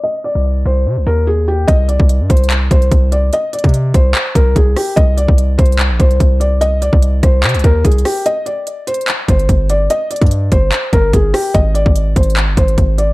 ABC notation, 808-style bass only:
X:1
M:4/4
L:1/16
Q:1/4=146
K:Gphr
V:1 name="808-style bass" clef=bass
z3 C,,3 C,,2 C, C,, E,,6 | C,,3 C,,2 G,, C,,4 C,,2 C,,4 | z3 C,3 C,,2 z2 C,,2 C,,2 z2 | C,,3 C,,3 C,,3 B,,, C,,2 C,,4- |
C,,3 C,,3 C,,2 C, C,, E,,2 C,,2 z2 | z8 z2 G,,,2 G,,,4 | z3 G,,3 G,,,2 z2 G,,,2 G,,,2 z2 | A,,,3 A,,,3 A,,,3 G,,, A,,,2 A,,,4 |]